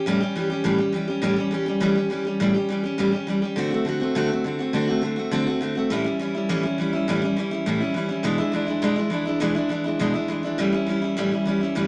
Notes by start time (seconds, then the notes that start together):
0.06 A2 E3 G3 C#4 G4
0.20 G3 C#4 G4
0.35 E3 G3 C#4 G4
0.50 G3 C#4 G4
0.64 A2 E3 G3 C#4 G4
0.78 G3 C#4 G4
0.92 E3 G3 C#4 G4
1.08 G3 C#4 G4
1.22 A2 E3 G3 C#4 G4
1.36 G3 C#4 G4
1.51 E3 G3 C#4 G4
1.66 G3 C#4 G4
1.80 A2 E3 G3 C#4 G4
1.95 G3 C#4 G4
2.10 E3 G3 C#4 G4
2.25 G3 C#4 G4
2.40 A2 E3 G3 C#4 G4
2.54 G3 C#4 G4
2.69 E3 G3 C#4 G4
2.83 G3 C#4 G4
2.98 A2 E3 G3 C#4 G4
3.12 G3 C#4 G4
3.27 E3 G3 C#4 G4
3.42 G3 C#4 G4
3.56 D3 A3 C4 F#4
3.70 A3 C4 F#4
3.85 D3 A3 C4 F#4
4.00 A3 C4 F#4
4.15 D3 A3 C4 F#4
4.30 A3 C4 F#4
4.44 D3 A3 C4 F#4
4.59 A3 C4 F#4
4.73 D3 A3 C4 F#4
4.87 A3 C4 F#4
5.01 D3 A3 C4 F#4
5.16 A3 C4 F#4
5.31 D3 A3 C4 F#4
5.46 A3 C4 F#4
5.61 D3 A3 C4 F#4
5.75 A3 C4 F#4
5.90 A2 E3 G3 C#4 E4
6.04 G3 C#4 E4
6.19 E3 G3 C#4 E4
6.35 G3 C#4 E4
6.49 A2 E3 G3 C#4 E4
6.63 G3 C#4 E4
6.78 E3 G3 C#4 E4
6.93 G3 C#4 E4
7.08 A2 E3 G3 C#4 E4
7.22 G3 C#4 E4
7.37 E3 G3 C#4 E4
7.51 G3 C#4 E4
7.66 A2 E3 G3 C#4 E4
7.80 G3 C#4 E4
7.94 E3 G3 C#4 E4
8.09 G3 C#4 E4
8.23 E2 B2 E3 G#3 D4 E4
8.38 E3 G#3 D4 E4
8.52 E3 G#3 D4 E4
8.66 E3 G#3 D4 E4
8.82 E2 B2 E3 G#3 D4 E4
8.96 E3 G#3 D4 E4
9.10 E3 G#3 D4 E4
9.25 E3 G#3 D4 E4
9.40 E2 B2 E3 G#3 D4 E4
9.55 E3 G#3 D4 E4
9.69 E3 G#3 D4 E4
9.84 E3 G#3 D4 E4
9.99 E2 B2 E3 G#3 D4 E4
10.14 E3 G#3 D4 E4
10.28 E3 G#3 D4 E4
10.43 E3 G#3 D4 E4
10.58 A2 E3 G3 C#4 E4
10.72 G3 C#4 E4
10.87 E3 G3 C#4 E4
11.02 G3 C#4 E4
11.17 A2 E3 G3 C#4 E4
11.31 G3 C#4 E4
11.45 E3 G3 C#4 E4
11.61 G3 C#4 E4
11.75 A2 E3 G3 C#4 E4